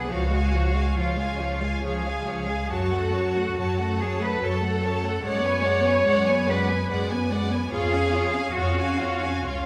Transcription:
Already playing: B3 G#4 B4 F#5
0.09 C#2 F3 F#4 C#5 F5
0.32 G#3 F5 G#5
0.53 F3 C#5 F5
0.75 G#3 F5 G#5
0.97 C#2 F3 F4 C#5 F5
1.18 G#3 F5 G#5
1.38 F3 C#5
1.45 F5
1.60 G#3 F5
1.65 G#5
1.84 C#2 F3 G#4 C#5 F5
2.05 G#3 F5 G#5
2.27 F3 C#5 F5
2.47 G#3 F5 G#5
2.71 F#2 F#3 F#4 C#5 A5
2.92 A3 A4 F#5
3.13 F#3 C#5 A5
3.35 A3 A4 F#5
3.57 F#2 F#3 C#5 A5
3.78 A3 A4 F#5
3.99 F#3 G#4 C#5 A5
4.20 A3 A4 B4 F#5
4.42 F#2 F#3 A4 C#5 A5
4.61 A3 F#5
4.66 A4
4.80 F#3 C#5 A5
5.01 A3 F#5
5.06 A4
5.22 F#2 G#3 C#5 D5 F#5
5.43 B3 B4 G#5
5.63 G#3 D5 F#5
5.84 B3 B4 G#5
6.06 F#2 G#3 D5 F#5
6.26 B3 B4 G#5
6.47 G#3 B4 D5 F#5
6.68 B3 B4 G#5
6.90 F#2 G#3 D5 F#5
7.11 B3 B4 G#5
7.31 G#3 D5 F#5
7.51 B3 B4 G#5
7.69 F2 F4 G#4 C#5 F5
7.91 C#4 F5 G#5
8.12 F4 C#5 F5
8.31 C#4 F5 G#5
8.55 F2 F4 F#4 C#5 F5
8.78 C#4 F5 G#5
9.00 F4 C#5 F5
9.22 C#4 F5 G#5
9.44 C#2 C#4 F4 C#5 F5

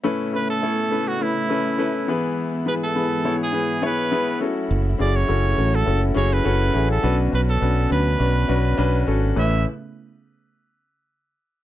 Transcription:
0.04 A2 C#3 A3 B3 C#4 E4 A4 B4
0.33 C#4 E4 A4 B4
0.50 A4
0.62 C#4 E4 A4 C#5
0.91 C#4 E4 A4 B4
1.08 F#4
1.20 C#4 E4 A4 B4
1.49 C#4 E4 A4 B4
1.78 C#4 E4 A4 B4
2.08 G#2 E3 B3 E4 G#4 B4
2.66 B3 E4 G#4 B4
2.83 A4
2.96 B3 E4 G#4 B4
3.25 B3 E4 G#4 C#5
3.43 G#4
3.53 B3 E4 G#4 B4
3.82 B3 E4 G#4 C#5
3.86 B4
4.12 B3 E4 G#4 B4
4.40 F#3 A3 C#4 E4 F#4 A4
4.71 F#1
4.98 F#1 C#4 E4 F#4 G#4 D5
5.16 C#5
5.28 F#1 C#4 E4 F#4 A4
5.57 A1 C#4 E4 F#4 A4
5.75 A4
5.86 F#1 C#4 E4 F#4 A4
6.14 F#1 C#4 E4 F#4 G#4 C#5
6.33 B4
6.45 F#1 C#4 E4 F#4 A4
6.74 A1 C#4 E4 F#4 G#4
6.91 A4
7.03 B1 B2 B3 C#4 D4 F#4 B4
7.32 B1 C#4 D4 F#4 B4
7.50 A4
7.61 B1 C#4 D4 F#4 B4
7.90 D2 C#4 D4 F#4 B4
8.19 B1 C#4 D4 F#4 B4
8.48 B1 C#4 D4 F#4 B4
8.77 B1 C#4 D4 F#4 B4
9.07 G#1 C#4 D4 F#4 A4
9.36 A1 C#3 A3 B3 C#4 E4 A4 B4 E5

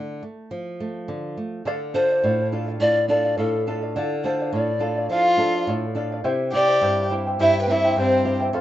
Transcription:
Already playing: D3
0.23 A3
0.51 F3
0.80 A3
1.08 D3
1.37 A3
1.65 D3 A4 D5 F5
1.94 D4 F4 A4 C5 D5 F5
2.10 D5 F5
2.24 A2 A4 D5 F5
2.52 D4 F4 A4 D5 F5
2.68 D5 F5
2.80 A2 A4 D5 F5
3.08 D4 F4 A4 D5
3.12 F5
3.25 D5 F5
3.38 A2 A4 D5 F5
3.67 D4 F4 A4 D5 F5
3.82 D5 F5
3.96 D3 A4 D5 F5
4.24 D4 F4 A4 C5 D5 F5
4.40 D5 F5
4.53 A2 A4 D5 F5
4.79 D4 F4 A4 D5 F5
4.97 D5 F5
5.09 F3 F4 A4 D5 F5
5.37 D4 F4 A4 D5 F5
5.54 D5 F5
5.67 A2 A4 D5 F5
5.95 D4 F4 A4 D5 F5
6.12 D5 F5
6.24 C3 E4 G4 C5 E5 G5
6.53 C4 E4 G4 C5 D5 E5 G5
6.68 E4 C5 G5
6.81 G2 E4 G4 C5 E5 G5
7.10 C4 E4 G4 C5 E5 G5
7.27 E4 C5 G5
7.39 G2 E4 G4 C5 E5 G5
7.62 B4 G5
7.67 C4 E4 G4 C5 E5 G5
7.72 E4
7.85 E4 C5 G5
7.96 G2 E4 G4 C5 E5 G5
8.01 C4
8.25 C4 E4 G4 C5 E5 G5
8.40 E4 C5 G5
8.53 F2 A4 C5 F5

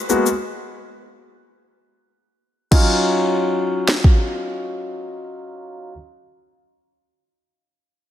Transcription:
0.09 G#3 A#3 B3 F#4, shaker
0.26 shaker
2.71 F#3 C#4 D#4 F4, kick, crash
3.88 snare
4.04 kick

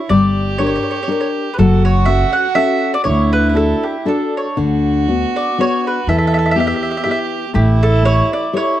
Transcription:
Already playing: E4
0.09 G1 G3 G4 D5
0.58 D4 G4 A#4 C#5
0.66 C#5
0.76 C#5
0.83 C#5
0.91 C#5
0.96 C#5
1.03 C#5
1.08 D4 G4 A#4
1.12 C#5
1.21 C#5
1.54 B4
1.58 F#1 F#3 F#4 A4
1.85 C#5
2.05 C#4 F#4 A4 E5
2.33 F#5
2.55 C#4 F#4 A4 E5
2.94 D5
3.04 D2 D3 E4 C#5
3.33 B4
3.49 B4
3.54 D4 F#4 A4
3.83 G4
4.05 D4 F#4 A4
4.37 C#5
4.57 D2 D3 F#4
5.08 B3 D4 F#4
5.36 D5
5.58 B3 D4 F#4 C#5
5.87 B4
6.07 E2 E3 A4 E5
6.18 E5
6.27 E5
6.34 E5
6.39 E5
6.46 E5
6.51 E5
6.56 B3 E4 G4
6.60 E5
6.67 E5
6.76 E5
6.83 E5
6.91 E5
6.97 E5
7.04 B3 E4 G4 E5
7.11 E5
7.54 A1 A3 E4 G4
7.83 A4
8.04 G4 A4 C#5
8.33 D5
8.53 E4 G4 A4 C#5

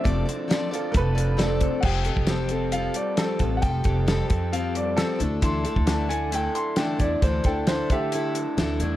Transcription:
Already playing: D3 C4 F4 A4
0.04 F1 F3 A3 C4 A4 D5, kick, closed hi-hat
0.26 D3 C4 A4 D5, closed hi-hat
0.48 D3 F3 A3 C4 A4 D5, snare, closed hi-hat
0.71 C4 F4 A4 D5, closed hi-hat
0.91 F1 A3 C4 A4 A#4 D5, kick, closed hi-hat
0.97 B4
1.15 C4 F4 A4 D5, closed hi-hat
1.37 F3 A3 C4 A4 D5, snare, closed hi-hat
1.41 C4 A4
1.61 D3, kick, closed hi-hat
1.81 F1 F3 G3 F#5, kick, crash
1.85 C4 G4 A4 G5
2.05 G4 A4, closed hi-hat
2.09 C4
2.16 F1, kick
2.27 F3 G3 C4 G4 A4, snare, closed hi-hat
2.49 C4 G4 A4, closed hi-hat
2.72 G3 C4 F4 G4 A4 F5, closed hi-hat
2.94 G3 D5, closed hi-hat
3.17 F3 G3 C4 G4 A4, snare, closed hi-hat
3.39 A1 C4 F4 G4 A4, kick, closed hi-hat
3.57 F#5
3.62 F1 F3 G3 C4 G4 A4 G5, kick, closed hi-hat
3.84 F1 C4 G4 A4, kick, closed hi-hat
4.07 F3 G3 C4 G4 A4, snare, closed hi-hat
4.28 F2 C4 G4 A4, kick, closed hi-hat
4.52 G3 C4 F4 G4 A4 F5, closed hi-hat
4.75 G3 D5, closed hi-hat
4.97 F3 G3 C4 G4 A4, snare, closed hi-hat
5.19 D2 D3 A3 D4 E4 A4, closed hi-hat
5.41 D3 E3 A3 D4 E4 A4 C6, kick, closed hi-hat
5.65 A3 D4 E4 A4, closed hi-hat
5.76 D2, kick
5.87 D3 E3 A3 D4 E4 A4 A5, snare, closed hi-hat
6.08 A3 D4 E4 A4 G#5, closed hi-hat
6.32 A3 D4 E4 A4 G5, closed hi-hat
6.54 D3 C6, closed hi-hat
6.76 D3 E3 A3 D4 E4 A4 G5, snare, closed hi-hat
6.99 E2 D4 E4 A4 D5, kick, closed hi-hat
7.03 A3
7.22 D2 D3 E3 A3 D4 E4 A4 C5, kick, closed hi-hat
7.44 D2 E4 A4 G5, kick, closed hi-hat
7.48 A3 D4
7.67 D3 E3 A3 D4 E4 A4 C5, snare, closed hi-hat
7.90 D3 A3 D4 E4 G4 A4 E5, kick, closed hi-hat
8.12 A3 D4 E4 A4, closed hi-hat
8.35 D3, closed hi-hat
8.57 D2 D3 E3 A3 D4 E4 A4, snare, closed hi-hat
8.80 E2 A3 D4 E4 A4, closed hi-hat

